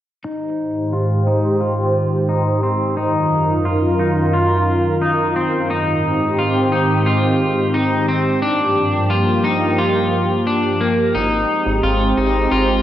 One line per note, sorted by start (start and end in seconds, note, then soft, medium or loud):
0.24 2.95 G#2 medium
0.24 5.66 D#3 medium
0.24 0.93 D#4 medium
0.24 2.95 G4 medium
0.24 2.95 C5 medium
0.93 1.27 F4 medium
1.27 1.61 D#4 medium
1.61 2.29 F4 medium
2.29 2.63 D#4 medium
2.63 2.97 C4 medium
2.97 5.67 F#2 medium
2.97 3.65 D#4 medium
2.97 5.67 F4 medium
2.97 5.67 A#4 medium
3.65 3.99 F4 medium
3.99 4.34 D#4 medium
4.34 5.02 F4 medium
5.02 5.36 D#4 medium
5.36 5.70 C4 medium
5.70 8.40 G#2 medium
5.70 8.40 D#3 medium
5.70 8.40 C4 medium
5.70 6.38 D#4 medium
5.70 8.40 G4 medium
6.38 6.72 F4 medium
6.72 7.06 D#4 medium
7.06 7.74 F4 medium
7.74 8.08 D#4 medium
8.08 8.42 C4 medium
8.42 11.13 G2 medium
8.42 11.13 F3 medium
8.42 11.13 A#3 medium
8.42 9.11 D4 medium
8.42 11.13 G4 medium
9.10 9.45 F4 medium
9.44 9.79 D#4 medium
9.79 10.47 F4 medium
10.47 10.81 D4 medium
10.81 11.15 A#3 medium
11.15 11.45 G#1 medium
11.15 12.82 G#3 medium
11.15 12.82 C4 medium
11.15 11.83 D#4 medium
11.15 12.82 G4 medium
11.66 11.81 G#1 medium
11.83 12.13 G#1 loud
11.83 12.17 F4 medium
12.17 12.48 G#1 loud
12.17 12.52 D#4 medium
12.51 12.82 G#1 loud
12.51 12.82 F4 medium